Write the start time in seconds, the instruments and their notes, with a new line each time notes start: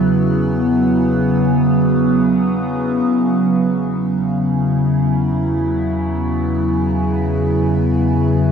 Already playing: sub bass E2, ambient pad C#3 F#3 B3 E4 G#4
3.05 sub bass E2, ambient pad C#3
3.71 ambient pad F#3
4.14 ambient pad E4
4.55 ambient pad B3
6.08 ambient pad G#4